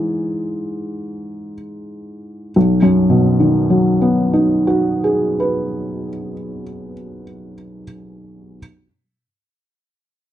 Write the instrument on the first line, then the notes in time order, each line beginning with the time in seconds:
felt piano
Already playing: G#2 E3 G#4
2.56 B1
2.82 F#2
3.10 B2
3.40 D#3
3.70 F#3
4.02 B3
4.33 D#4
4.67 F#4
5.04 G#4
5.40 B4